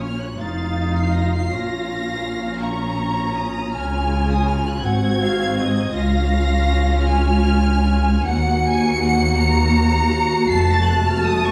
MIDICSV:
0, 0, Header, 1, 6, 480
1, 0, Start_track
1, 0, Key_signature, -5, "minor"
1, 0, Tempo, 738007
1, 996, Time_signature, 6, 3, 24, 8
1, 4342, Tempo, 790514
1, 5302, Tempo, 752823
1, 7380, End_track
2, 0, Start_track
2, 0, Title_t, "Violin section"
2, 0, Program_c, 0, 48
2, 21, Note_on_c, 0, 89, 76
2, 142, Note_on_c, 0, 90, 65
2, 143, Note_off_c, 0, 89, 0
2, 264, Note_on_c, 0, 93, 76
2, 269, Note_off_c, 0, 90, 0
2, 634, Note_on_c, 0, 96, 67
2, 635, Note_off_c, 0, 93, 0
2, 748, Note_on_c, 0, 94, 75
2, 756, Note_off_c, 0, 96, 0
2, 872, Note_off_c, 0, 94, 0
2, 876, Note_on_c, 0, 96, 75
2, 985, Note_on_c, 0, 94, 97
2, 993, Note_off_c, 0, 96, 0
2, 1707, Note_off_c, 0, 94, 0
2, 1711, Note_on_c, 0, 85, 73
2, 2186, Note_on_c, 0, 87, 83
2, 2193, Note_off_c, 0, 85, 0
2, 2427, Note_off_c, 0, 87, 0
2, 2429, Note_on_c, 0, 89, 81
2, 2782, Note_off_c, 0, 89, 0
2, 2801, Note_on_c, 0, 87, 84
2, 2903, Note_on_c, 0, 89, 83
2, 2916, Note_off_c, 0, 87, 0
2, 3027, Note_off_c, 0, 89, 0
2, 3044, Note_on_c, 0, 90, 88
2, 3151, Note_on_c, 0, 92, 104
2, 3157, Note_off_c, 0, 90, 0
2, 3859, Note_on_c, 0, 94, 112
2, 3865, Note_off_c, 0, 92, 0
2, 4551, Note_off_c, 0, 94, 0
2, 4564, Note_on_c, 0, 89, 103
2, 5298, Note_off_c, 0, 89, 0
2, 5298, Note_on_c, 0, 97, 127
2, 6709, Note_off_c, 0, 97, 0
2, 6730, Note_on_c, 0, 96, 102
2, 6852, Note_off_c, 0, 96, 0
2, 6858, Note_on_c, 0, 93, 111
2, 6966, Note_on_c, 0, 90, 96
2, 6976, Note_off_c, 0, 93, 0
2, 7091, Note_off_c, 0, 90, 0
2, 7098, Note_on_c, 0, 89, 103
2, 7214, Note_on_c, 0, 87, 120
2, 7218, Note_off_c, 0, 89, 0
2, 7336, Note_off_c, 0, 87, 0
2, 7343, Note_on_c, 0, 85, 104
2, 7380, Note_off_c, 0, 85, 0
2, 7380, End_track
3, 0, Start_track
3, 0, Title_t, "Violin section"
3, 0, Program_c, 1, 48
3, 0, Note_on_c, 1, 73, 60
3, 244, Note_off_c, 1, 73, 0
3, 271, Note_on_c, 1, 77, 59
3, 979, Note_off_c, 1, 77, 0
3, 987, Note_on_c, 1, 77, 64
3, 1694, Note_off_c, 1, 77, 0
3, 1700, Note_on_c, 1, 82, 72
3, 2425, Note_off_c, 1, 82, 0
3, 2431, Note_on_c, 1, 80, 76
3, 3145, Note_on_c, 1, 78, 70
3, 3150, Note_off_c, 1, 80, 0
3, 3386, Note_off_c, 1, 78, 0
3, 3397, Note_on_c, 1, 77, 67
3, 3626, Note_off_c, 1, 77, 0
3, 3650, Note_on_c, 1, 75, 72
3, 3875, Note_on_c, 1, 77, 89
3, 3876, Note_off_c, 1, 75, 0
3, 4572, Note_off_c, 1, 77, 0
3, 4574, Note_on_c, 1, 80, 78
3, 5288, Note_off_c, 1, 80, 0
3, 5305, Note_on_c, 1, 78, 85
3, 5548, Note_off_c, 1, 78, 0
3, 5569, Note_on_c, 1, 80, 81
3, 5790, Note_on_c, 1, 78, 78
3, 5791, Note_off_c, 1, 80, 0
3, 6020, Note_off_c, 1, 78, 0
3, 6022, Note_on_c, 1, 82, 91
3, 6733, Note_on_c, 1, 81, 95
3, 6735, Note_off_c, 1, 82, 0
3, 7380, Note_off_c, 1, 81, 0
3, 7380, End_track
4, 0, Start_track
4, 0, Title_t, "Viola section"
4, 0, Program_c, 2, 48
4, 0, Note_on_c, 2, 61, 53
4, 0, Note_on_c, 2, 65, 55
4, 236, Note_off_c, 2, 61, 0
4, 265, Note_on_c, 2, 63, 68
4, 967, Note_off_c, 2, 63, 0
4, 988, Note_on_c, 2, 61, 62
4, 2397, Note_off_c, 2, 65, 0
4, 2432, Note_on_c, 2, 65, 62
4, 3120, Note_off_c, 2, 61, 0
4, 3124, Note_off_c, 2, 65, 0
4, 3151, Note_on_c, 2, 60, 79
4, 3154, Note_on_c, 2, 66, 87
4, 3839, Note_off_c, 2, 60, 0
4, 3840, Note_off_c, 2, 66, 0
4, 3857, Note_on_c, 2, 61, 78
4, 3862, Note_on_c, 2, 65, 75
4, 5272, Note_off_c, 2, 61, 0
4, 5274, Note_off_c, 2, 65, 0
4, 5296, Note_on_c, 2, 66, 84
4, 5297, Note_on_c, 2, 58, 83
4, 6709, Note_off_c, 2, 58, 0
4, 6738, Note_on_c, 2, 57, 87
4, 7380, Note_off_c, 2, 57, 0
4, 7380, Note_off_c, 2, 66, 0
4, 7380, End_track
5, 0, Start_track
5, 0, Title_t, "Cello section"
5, 0, Program_c, 3, 48
5, 0, Note_on_c, 3, 46, 53
5, 245, Note_off_c, 3, 46, 0
5, 265, Note_on_c, 3, 41, 61
5, 993, Note_off_c, 3, 41, 0
5, 996, Note_on_c, 3, 46, 57
5, 2426, Note_on_c, 3, 49, 65
5, 2431, Note_off_c, 3, 46, 0
5, 3147, Note_on_c, 3, 44, 68
5, 3148, Note_off_c, 3, 49, 0
5, 3863, Note_off_c, 3, 44, 0
5, 3866, Note_on_c, 3, 37, 74
5, 5276, Note_off_c, 3, 37, 0
5, 5303, Note_on_c, 3, 39, 84
5, 6712, Note_off_c, 3, 39, 0
5, 6735, Note_on_c, 3, 41, 79
5, 7380, Note_off_c, 3, 41, 0
5, 7380, End_track
6, 0, Start_track
6, 0, Title_t, "Double bass section"
6, 0, Program_c, 4, 48
6, 0, Note_on_c, 4, 34, 54
6, 244, Note_off_c, 4, 34, 0
6, 270, Note_on_c, 4, 29, 50
6, 994, Note_on_c, 4, 34, 54
6, 996, Note_off_c, 4, 29, 0
6, 2421, Note_on_c, 4, 37, 65
6, 2430, Note_off_c, 4, 34, 0
6, 3143, Note_on_c, 4, 32, 63
6, 3145, Note_off_c, 4, 37, 0
6, 3857, Note_on_c, 4, 37, 75
6, 3861, Note_off_c, 4, 32, 0
6, 5272, Note_off_c, 4, 37, 0
6, 5295, Note_on_c, 4, 39, 85
6, 6707, Note_off_c, 4, 39, 0
6, 6737, Note_on_c, 4, 29, 86
6, 7380, Note_off_c, 4, 29, 0
6, 7380, End_track
0, 0, End_of_file